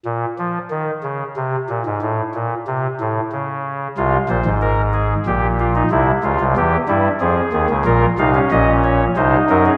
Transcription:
<<
  \new Staff \with { instrumentName = "Pipe organ" } { \time 3/4 \key bes \minor \tempo 4 = 92 r2. | r2. | f'8 c''8 bes'8 aes'8 g'8 f'16 ees'16 | e'8 f'8 g'8 e'8 aes'4 |
f'8 ees'16 des'4~ des'16 ees'4 | }
  \new Staff \with { instrumentName = "Pipe organ" } { \clef bass \time 3/4 \key bes \minor << { bes,8 f8 ees8 des8 c8 bes,16 aes,16 | a,8 bes,8 c8 a,8 des4 | r2. | r2. |
bes'8 f''8 ees''8 des''8 c''8 bes'16 aes'16 | } \\ { r2. | r2. | <c, c>8 <bes,, bes,>16 <aes,, aes,>4~ <aes,, aes,>16 <bes,, bes,>4 | <c, c>8 <des, des>16 <c, c>16 <e, e>8 <g, g>8 <f, f>8 <ees, ees>16 <des, des>16 |
<bes,, bes,>8 <c, c>8 <bes,, bes,>4 <c, c>8 <ges, ges>8 | } >> }
>>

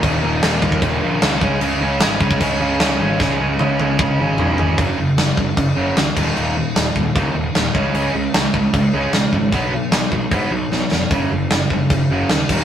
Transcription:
<<
  \new Staff \with { instrumentName = "Distorted electric guitar" } { \clef bass \time 4/4 \key ges \major \tempo 4 = 152 <ees, bes, ees>8 <ees, bes, ees>8 <ees, bes, ees>8 <ees, bes, ees>8 <ees, bes, ees>8 <ees, bes, ees>8 <ees, bes, ees>8 <des aes des'>8 | <des aes des'>8 <des aes des'>8 <des aes des'>8 <des aes des'>8 <des aes des'>8 <des aes des'>8 <des aes des'>8 <des aes des'>8 | <des aes des'>8 <des aes des'>8 <des aes des'>8 <des aes des'>8 <des aes des'>8 <des aes des'>8 <des aes des'>8 <des aes des'>8 | <ges, des ges>8 <ges, des>8 <ges, des>8 <ges, des>8 <ges, des>8 <ges, des ges>8 <ges, des>8 <ees, bes, ees>8 |
<ees, bes, ees>8 <ees, bes,>8 <ees, bes,>8 <ees, bes,>8 <ees, bes, ees>8 <ees, bes,>8 <ees, bes,>8 <des aes des'>8 | <des aes des'>8 <des aes>8 <des aes>8 <des aes>8 <des aes>8 <des aes des'>8 <des aes>8 <des aes>8 | <b, fis b>8 <b, fis>8 <b, fis>8 <b, fis>8 <b, fis b>8 <b, fis>8 <b, fis>8 <b, fis>8 | <ges, des ges>8 <ges, des>8 <ges, des>8 <ges, des>8 <ges, des>8 <ges, des ges>8 <ges, des>8 <ees, bes, ees>8 | }
  \new Staff \with { instrumentName = "Picked electric bass" } { \clef bass \time 4/4 \key ges \major ees,,8 ees,,8 ees,,8 ees,8 ees,,8 bes,,8 des,8 des,8 | des,8 des,8 aes,,8 des,8 des,8 des,8 des,8 aes,,8 | des,8 des,8 des,8 des,8 des,8 aes,,8 ces,8 aes,,8 | ges,,8 ges,,8 ges,,8 ges,,8 ges,,8 ges,,8 d,8 ees,,8 |
ees,,4 ees,,8 ees,,8 des,8 ees,,8 ees,,8 des,8 | des,8 des,8 des,8 des,8 des,8 des,8 ces,8 aes,,8 | b,,4 b,,8 b,,8 aes,8 b,,8 b,,8 f,,8 | ges,,8 ges,,8 ges,,8 ges,,8 ges,,8 ges,,8 ees,8 ees,,8 | }
  \new DrumStaff \with { instrumentName = "Drums" } \drummode { \time 4/4 <cymc bd>4 <cymc sn>8 bd16 bd16 <cymc bd>4 <cymc sn>8 bd8 | cymc4 <cymc sn>8 bd16 bd16 <cymc bd>4 <cymc sn>4 | <bd sn>4 tommh8 tommh8 <bd toml>4 tomfh8 tomfh8 | <cymc bd>4 <cymc sn>8 bd8 <cymc bd>4 <cymc sn>8 <cymc bd>8 |
cymc4 <cymc sn>8 bd8 <cymc bd>4 <cymc sn>8 bd8 | cymc4 <cymc sn>8 bd8 <cymc bd>4 <cymc sn>8 bd8 | <cymc bd>4 <cymc sn>8 bd8 <cymc bd>4 sn8 sn8 | <cymc bd>4 <cymc sn>8 bd8 <cymc bd>4 <cymc sn>8 <cymc bd>8 | }
>>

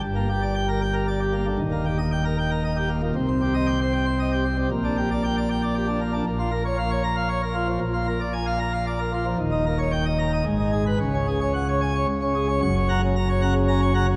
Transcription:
<<
  \new Staff \with { instrumentName = "Pipe organ" } { \time 3/4 \key g \minor \tempo 4 = 115 << { r4 g''16 r4. r16 | r4 g''16 r4. r16 | r4 g''16 r4. r16 | r4 g''16 r4. r16 |
\key fis \major r4. ais''16 r4 r16 | r4. ais''16 r4 r16 | r4. ais''16 r4 b'16 | r4. gis''16 r4 cis''16 |
cis'''16 cis''16 <fis'' ais''>16 cis16 ais''16 cis''16 <fis'' ais''>16 cis16 ais''16 cis''16 <fis'' ais''>16 cis16 | } \\ { g,16 bes16 g'16 d''16 r16 bes'16 g''16 bes'16 d''16 g'16 bes16 d16 | ees,16 bes16 g'16 ees''16 r16 bes'16 g''16 bes'16 ees''16 g'16 bes16 bes,16 | c16 c'16 g'16 ees''16 r16 c''16 g''16 c''16 ees''16 g'16 c'16 g16 | bes,16 d'16 g'16 d''16 r16 d''16 g''16 d''16 g'16 d'16 bes16 d'16 |
ais,16 eis'16 ais'16 cis''16 eis''16 cis''16 r16 eis''16 cis''16 ais'16 eis'16 eis16 | ais,16 eis'16 ais'16 d''16 gis''16 eis''16 r16 eis''16 d''16 ais'16 eis'16 eis16 | dis,16 dis'16 ais'16 cis''16 g''16 dis''16 r16 dis''16 gis,16 dis'16 gis'16 r16 | cis16 cis'16 gis'16 cis''16 fis''16 cis''16 r16 cis''16 cis16 cis'16 gis'16 r16 |
fis,8 cis8 r8 cis8 cis'8 cis8 | } >> }
  \new Staff \with { instrumentName = "Pipe organ" } { \clef bass \time 3/4 \key g \minor g,,2. | ees,,2. | c,2. | bes,,2. |
\key fis \major ais,,2. | ais,,2. | dis,,2 gis,,4 | cis,2 cis,4 |
fis,,2. | }
>>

